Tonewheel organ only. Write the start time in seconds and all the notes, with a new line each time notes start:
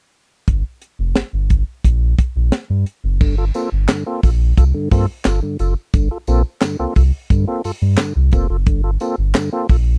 3.21 G2 D3
3.38 F4 A4
3.55 A#3 C4 F4 A4
3.89 G2 D3
4.06 A#3 C4 F4 A4
4.23 F4 A4
4.58 F4 A4
4.74 G2 D3
4.91 A#3 C4 F4 A4
5.25 F4 A4
5.42 G2 D3
5.60 F4 A4
5.94 G2 D3
6.11 F4 A4
6.28 A#3 C4 F4 A4
6.63 G2 D3
6.79 A#3 C4 F4 A4
6.96 F4 A4
7.30 G2 D3
7.47 A#3 C4 F4 A4
7.65 F4 A4
7.99 G2 D3
8.32 A#3 C4 F4 A4
8.50 F4 A4
8.67 G2 D3
8.84 F4 A4
9.01 A#3 C4 F4 A4
9.35 G2 D3
9.52 A#3 C4 F4 A4
9.70 F4 A4